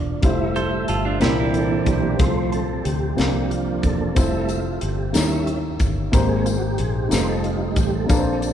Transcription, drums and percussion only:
0.23 kick, closed hi-hat
0.56 closed hi-hat
0.88 closed hi-hat
1.21 snare, closed hi-hat
1.54 closed hi-hat
1.86 kick, closed hi-hat
2.19 kick, closed hi-hat
2.52 closed hi-hat
2.85 closed hi-hat
3.18 snare, closed hi-hat
3.51 closed hi-hat
3.83 kick, closed hi-hat
4.16 kick, closed hi-hat, tambourine
4.49 closed hi-hat, tambourine
4.81 closed hi-hat
5.14 snare, closed hi-hat, tambourine
5.47 closed hi-hat
5.80 kick, closed hi-hat, tambourine
6.13 kick, closed hi-hat, tambourine
6.46 closed hi-hat, tambourine
6.78 closed hi-hat
7.11 snare, closed hi-hat, tambourine
7.44 closed hi-hat
7.76 kick, closed hi-hat, tambourine
8.09 kick, closed hi-hat, tambourine
8.42 closed hi-hat, tambourine

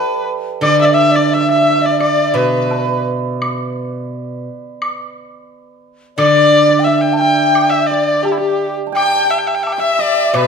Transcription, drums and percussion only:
0.63 high woodblock
2.01 high woodblock
2.71 low woodblock
3.42 high woodblock
4.82 high woodblock
6.19 high woodblock
7.55 high woodblock
8.25 low woodblock
8.96 high woodblock
9.67 high woodblock, low woodblock
10.34 high woodblock

